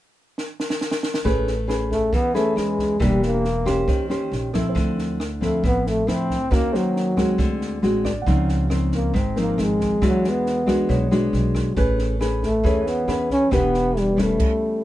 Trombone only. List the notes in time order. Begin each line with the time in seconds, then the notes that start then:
1.91 A3
2.13 B3
2.35 A3
2.58 G#3
3.02 G3
3.24 A#3
5.42 A3
5.66 B3
5.88 A3
6.09 C4
6.53 A#3
6.75 F#3
8.95 A#3
9.16 C4
9.40 A#3
9.62 G#3
10.06 F#3
10.29 B3
12.45 A3
12.87 B3
13.32 C#4
13.53 B3
13.98 G3
14.21 A3